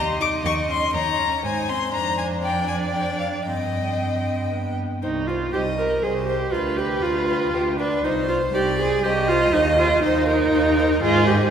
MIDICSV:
0, 0, Header, 1, 5, 480
1, 0, Start_track
1, 0, Key_signature, -3, "minor"
1, 0, Tempo, 495868
1, 434, Time_signature, 3, 2, 24, 8
1, 2358, Tempo, 517241
1, 4758, Tempo, 504626
1, 7158, Tempo, 497512
1, 10976, End_track
2, 0, Start_track
2, 0, Title_t, "Violin"
2, 0, Program_c, 0, 40
2, 204, Note_on_c, 0, 86, 80
2, 281, Note_off_c, 0, 86, 0
2, 441, Note_on_c, 0, 85, 75
2, 518, Note_off_c, 0, 85, 0
2, 684, Note_on_c, 0, 84, 68
2, 913, Note_off_c, 0, 84, 0
2, 932, Note_on_c, 0, 82, 77
2, 1394, Note_off_c, 0, 82, 0
2, 1410, Note_on_c, 0, 80, 62
2, 1635, Note_on_c, 0, 84, 70
2, 1649, Note_off_c, 0, 80, 0
2, 1875, Note_off_c, 0, 84, 0
2, 1885, Note_on_c, 0, 82, 71
2, 2107, Note_off_c, 0, 82, 0
2, 2113, Note_on_c, 0, 80, 56
2, 2190, Note_off_c, 0, 80, 0
2, 2359, Note_on_c, 0, 79, 63
2, 2579, Note_off_c, 0, 79, 0
2, 2584, Note_on_c, 0, 80, 54
2, 2658, Note_off_c, 0, 80, 0
2, 2825, Note_on_c, 0, 79, 53
2, 3058, Note_off_c, 0, 79, 0
2, 3064, Note_on_c, 0, 77, 52
2, 3138, Note_off_c, 0, 77, 0
2, 3301, Note_on_c, 0, 75, 54
2, 4252, Note_off_c, 0, 75, 0
2, 4761, Note_on_c, 0, 72, 47
2, 4837, Note_off_c, 0, 72, 0
2, 5016, Note_on_c, 0, 72, 43
2, 5092, Note_off_c, 0, 72, 0
2, 5251, Note_on_c, 0, 72, 48
2, 5327, Note_off_c, 0, 72, 0
2, 5492, Note_on_c, 0, 72, 42
2, 5568, Note_off_c, 0, 72, 0
2, 5727, Note_on_c, 0, 72, 45
2, 5803, Note_off_c, 0, 72, 0
2, 5968, Note_on_c, 0, 72, 50
2, 6044, Note_off_c, 0, 72, 0
2, 6204, Note_on_c, 0, 71, 54
2, 6280, Note_off_c, 0, 71, 0
2, 6435, Note_on_c, 0, 71, 46
2, 6511, Note_off_c, 0, 71, 0
2, 6688, Note_on_c, 0, 71, 51
2, 6764, Note_off_c, 0, 71, 0
2, 6925, Note_on_c, 0, 71, 45
2, 7001, Note_off_c, 0, 71, 0
2, 7160, Note_on_c, 0, 71, 49
2, 7237, Note_off_c, 0, 71, 0
2, 7397, Note_on_c, 0, 71, 52
2, 7475, Note_off_c, 0, 71, 0
2, 7642, Note_on_c, 0, 72, 60
2, 7719, Note_off_c, 0, 72, 0
2, 7875, Note_on_c, 0, 72, 48
2, 7952, Note_off_c, 0, 72, 0
2, 8125, Note_on_c, 0, 72, 59
2, 8202, Note_off_c, 0, 72, 0
2, 8368, Note_on_c, 0, 72, 54
2, 8445, Note_off_c, 0, 72, 0
2, 8605, Note_on_c, 0, 72, 54
2, 8683, Note_off_c, 0, 72, 0
2, 8856, Note_on_c, 0, 72, 57
2, 8933, Note_off_c, 0, 72, 0
2, 9080, Note_on_c, 0, 72, 66
2, 9157, Note_off_c, 0, 72, 0
2, 9320, Note_on_c, 0, 72, 57
2, 9397, Note_off_c, 0, 72, 0
2, 9555, Note_on_c, 0, 72, 66
2, 9632, Note_off_c, 0, 72, 0
2, 9809, Note_on_c, 0, 72, 57
2, 9886, Note_off_c, 0, 72, 0
2, 10055, Note_on_c, 0, 72, 58
2, 10132, Note_off_c, 0, 72, 0
2, 10294, Note_on_c, 0, 72, 63
2, 10371, Note_off_c, 0, 72, 0
2, 10530, Note_on_c, 0, 75, 69
2, 10649, Note_on_c, 0, 72, 60
2, 10663, Note_off_c, 0, 75, 0
2, 10765, Note_on_c, 0, 75, 61
2, 10779, Note_off_c, 0, 72, 0
2, 10887, Note_on_c, 0, 72, 59
2, 10902, Note_off_c, 0, 75, 0
2, 10976, Note_off_c, 0, 72, 0
2, 10976, End_track
3, 0, Start_track
3, 0, Title_t, "Violin"
3, 0, Program_c, 1, 40
3, 0, Note_on_c, 1, 75, 64
3, 913, Note_on_c, 1, 73, 55
3, 928, Note_off_c, 1, 75, 0
3, 1395, Note_off_c, 1, 73, 0
3, 1404, Note_on_c, 1, 72, 57
3, 2361, Note_on_c, 1, 74, 53
3, 2375, Note_off_c, 1, 72, 0
3, 3304, Note_off_c, 1, 74, 0
3, 3310, Note_on_c, 1, 79, 45
3, 4494, Note_off_c, 1, 79, 0
3, 5244, Note_on_c, 1, 75, 55
3, 5690, Note_off_c, 1, 75, 0
3, 5711, Note_on_c, 1, 72, 54
3, 6181, Note_off_c, 1, 72, 0
3, 6187, Note_on_c, 1, 71, 65
3, 7152, Note_on_c, 1, 67, 55
3, 7167, Note_off_c, 1, 71, 0
3, 7395, Note_off_c, 1, 67, 0
3, 7401, Note_on_c, 1, 71, 58
3, 7637, Note_off_c, 1, 71, 0
3, 7653, Note_on_c, 1, 72, 71
3, 8123, Note_on_c, 1, 74, 71
3, 8138, Note_off_c, 1, 72, 0
3, 8601, Note_off_c, 1, 74, 0
3, 8607, Note_on_c, 1, 75, 77
3, 9547, Note_off_c, 1, 75, 0
3, 9556, Note_on_c, 1, 72, 74
3, 9790, Note_off_c, 1, 72, 0
3, 9796, Note_on_c, 1, 70, 74
3, 10502, Note_off_c, 1, 70, 0
3, 10510, Note_on_c, 1, 68, 79
3, 10976, Note_off_c, 1, 68, 0
3, 10976, End_track
4, 0, Start_track
4, 0, Title_t, "Viola"
4, 0, Program_c, 2, 41
4, 0, Note_on_c, 2, 67, 46
4, 191, Note_on_c, 2, 63, 51
4, 206, Note_off_c, 2, 67, 0
4, 431, Note_off_c, 2, 63, 0
4, 442, Note_on_c, 2, 63, 48
4, 663, Note_on_c, 2, 61, 44
4, 678, Note_off_c, 2, 63, 0
4, 918, Note_on_c, 2, 63, 47
4, 933, Note_off_c, 2, 61, 0
4, 1154, Note_on_c, 2, 61, 42
4, 1168, Note_off_c, 2, 63, 0
4, 1394, Note_off_c, 2, 61, 0
4, 1409, Note_on_c, 2, 63, 42
4, 1648, Note_on_c, 2, 60, 42
4, 1662, Note_off_c, 2, 63, 0
4, 1874, Note_off_c, 2, 60, 0
4, 1880, Note_on_c, 2, 62, 50
4, 3316, Note_on_c, 2, 60, 39
4, 3330, Note_off_c, 2, 62, 0
4, 4282, Note_on_c, 2, 59, 35
4, 4296, Note_off_c, 2, 60, 0
4, 4572, Note_off_c, 2, 59, 0
4, 4755, Note_on_c, 2, 63, 64
4, 4993, Note_on_c, 2, 65, 66
4, 5007, Note_off_c, 2, 63, 0
4, 5232, Note_off_c, 2, 65, 0
4, 5238, Note_on_c, 2, 67, 70
4, 5314, Note_off_c, 2, 67, 0
4, 5471, Note_on_c, 2, 70, 67
4, 5711, Note_on_c, 2, 68, 60
4, 5725, Note_off_c, 2, 70, 0
4, 5932, Note_off_c, 2, 68, 0
4, 5938, Note_on_c, 2, 67, 74
4, 6181, Note_on_c, 2, 65, 67
4, 6195, Note_off_c, 2, 67, 0
4, 6420, Note_on_c, 2, 67, 73
4, 6434, Note_off_c, 2, 65, 0
4, 6661, Note_on_c, 2, 65, 79
4, 6675, Note_off_c, 2, 67, 0
4, 7386, Note_off_c, 2, 65, 0
4, 7392, Note_on_c, 2, 62, 74
4, 7632, Note_on_c, 2, 63, 75
4, 7646, Note_off_c, 2, 62, 0
4, 7864, Note_off_c, 2, 63, 0
4, 7870, Note_on_c, 2, 65, 75
4, 7947, Note_off_c, 2, 65, 0
4, 8111, Note_on_c, 2, 67, 81
4, 8346, Note_off_c, 2, 67, 0
4, 8352, Note_on_c, 2, 68, 80
4, 8595, Note_on_c, 2, 67, 84
4, 8609, Note_off_c, 2, 68, 0
4, 8830, Note_on_c, 2, 65, 94
4, 8844, Note_off_c, 2, 67, 0
4, 9079, Note_on_c, 2, 63, 84
4, 9093, Note_off_c, 2, 65, 0
4, 9305, Note_off_c, 2, 63, 0
4, 9311, Note_on_c, 2, 65, 87
4, 9546, Note_off_c, 2, 65, 0
4, 9552, Note_on_c, 2, 63, 92
4, 10495, Note_off_c, 2, 63, 0
4, 10515, Note_on_c, 2, 65, 100
4, 10750, Note_on_c, 2, 67, 86
4, 10765, Note_off_c, 2, 65, 0
4, 10976, Note_off_c, 2, 67, 0
4, 10976, End_track
5, 0, Start_track
5, 0, Title_t, "Cello"
5, 0, Program_c, 3, 42
5, 0, Note_on_c, 3, 39, 61
5, 357, Note_off_c, 3, 39, 0
5, 423, Note_on_c, 3, 39, 68
5, 828, Note_off_c, 3, 39, 0
5, 908, Note_on_c, 3, 39, 61
5, 1313, Note_off_c, 3, 39, 0
5, 1387, Note_on_c, 3, 44, 61
5, 1792, Note_off_c, 3, 44, 0
5, 1862, Note_on_c, 3, 41, 51
5, 3269, Note_off_c, 3, 41, 0
5, 3300, Note_on_c, 3, 43, 41
5, 4537, Note_off_c, 3, 43, 0
5, 4758, Note_on_c, 3, 36, 56
5, 5184, Note_off_c, 3, 36, 0
5, 5250, Note_on_c, 3, 36, 55
5, 5671, Note_off_c, 3, 36, 0
5, 5725, Note_on_c, 3, 36, 58
5, 6144, Note_off_c, 3, 36, 0
5, 6200, Note_on_c, 3, 38, 59
5, 6622, Note_off_c, 3, 38, 0
5, 6674, Note_on_c, 3, 38, 60
5, 7100, Note_off_c, 3, 38, 0
5, 7150, Note_on_c, 3, 38, 61
5, 7581, Note_off_c, 3, 38, 0
5, 7639, Note_on_c, 3, 36, 66
5, 8064, Note_off_c, 3, 36, 0
5, 8114, Note_on_c, 3, 36, 69
5, 8545, Note_off_c, 3, 36, 0
5, 8586, Note_on_c, 3, 36, 67
5, 9019, Note_off_c, 3, 36, 0
5, 9069, Note_on_c, 3, 39, 77
5, 9500, Note_off_c, 3, 39, 0
5, 9557, Note_on_c, 3, 39, 69
5, 9985, Note_off_c, 3, 39, 0
5, 10035, Note_on_c, 3, 39, 76
5, 10459, Note_off_c, 3, 39, 0
5, 10515, Note_on_c, 3, 44, 83
5, 10939, Note_off_c, 3, 44, 0
5, 10976, End_track
0, 0, End_of_file